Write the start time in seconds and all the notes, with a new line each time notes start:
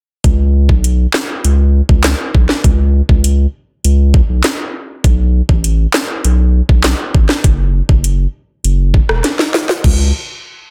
0.24 C#2, kick, closed hi-hat
0.69 B1, kick
0.84 closed hi-hat
1.13 snare, clap
1.44 C#2, closed hi-hat
1.89 C#2, kick
2.03 snare, clap, closed hi-hat
2.35 B1, kick
2.49 snare
2.64 C#2, kick, closed hi-hat
3.09 C#2, kick
3.24 closed hi-hat
3.84 C#2, closed hi-hat
4.14 kick
4.29 B1
4.43 snare, clap, closed hi-hat
5.04 B1, kick, closed hi-hat
5.49 A1, kick
5.64 closed hi-hat
5.93 snare, clap
6.24 B1, closed hi-hat
6.69 B1, kick
6.83 snare, clap, closed hi-hat
7.15 G#1, kick
7.29 snare
7.44 F#1, kick, closed hi-hat
7.89 F#1, kick
8.04 closed hi-hat
8.64 F#1, closed hi-hat
8.94 kick
9.09 E1, cross-stick
9.24 snare, closed hi-hat
9.39 snare
9.54 snare
9.69 snare
9.84 C#2, kick, crash